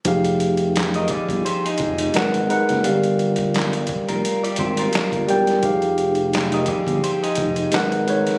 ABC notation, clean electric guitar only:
X:1
M:4/4
L:1/16
Q:"Swing 16ths" 1/4=86
K:Fdor
V:1 name="Clean electric guitar"
z4 z [Be] [Ad]2 [Gc] [EA]3 z4 | z6 z [FB]2 [Gd] [Gc] [FB]4- [FB] | z4 z [Be] [Ad]2 [Gc] [EA]3 z4 |]